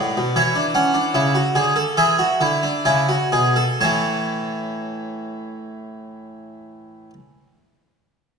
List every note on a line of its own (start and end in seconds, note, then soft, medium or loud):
0.00 0.17 A2 medium
0.00 0.34 F#4 medium
0.00 0.34 D5 medium
0.17 0.36 B2 medium
0.36 1.12 E3 medium
0.36 0.55 E4 medium
0.36 0.60 C#5 medium
0.55 0.74 D4 medium
0.74 0.94 C#4 medium
0.74 1.94 F#5 medium
0.94 1.14 D4 medium
1.14 1.40 C#3 medium
1.14 1.34 E4 medium
1.35 1.55 F#4 medium
1.55 1.82 D3 medium
1.55 1.76 G#4 medium
1.76 1.97 A4 medium
1.97 2.25 E3 medium
1.97 2.18 G#4 medium
1.97 2.83 E5 medium
2.19 2.40 F#4 medium
2.41 2.69 D3 medium
2.41 2.63 E4 medium
2.63 2.85 D4 medium
2.85 3.14 C#3 medium
2.85 3.08 E4 medium
2.85 3.78 G#5 medium
3.09 3.32 F#4 medium
3.32 3.63 B2 medium
3.32 3.56 G#4 medium
3.56 3.80 A4 medium
3.80 7.10 A2 medium
3.80 7.13 E3 medium
3.80 7.13 A3 medium
3.80 7.10 C#5 medium
3.80 7.10 A5 medium